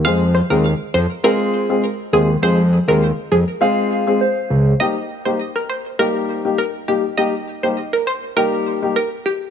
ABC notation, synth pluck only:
X:1
M:4/4
L:1/16
Q:1/4=101
K:Ebmix
V:1 name="Synth pluck"
f z c B2 z c2 B3 z3 A z | c z2 B z2 A z8 z | e2 z c z B c z B3 z B z G z | e2 z c z B c z B3 z B z G z |]